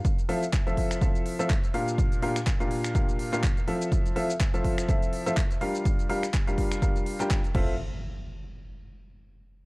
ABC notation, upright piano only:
X:1
M:4/4
L:1/16
Q:"Swing 16ths" 1/4=124
K:F
V:1 name="Upright piano"
z2 [F,CEFAe] z2 [F,CEFAe]3 [F,CEFAe]3 [F,CEFAe] z2 [B,,DFGBf]2- | [B,,DFGBf]2 [B,,DFGBf] z2 [B,,DFGBf]3 [B,,DFGBf]3 [B,,DFGBf] z2 [F,CEFAe]2- | [F,CEFAe]2 [F,CEFAe] z2 [F,CEFAe]3 [F,CEFAe]3 [F,CEFAe] z2 [G,DFGBf]2- | [G,DFGBf]2 [G,DFGBf] z2 [G,DFGBf]3 [G,DFGBf]3 [G,DFGBg]2 z [CEFAe]2 |
z16 |]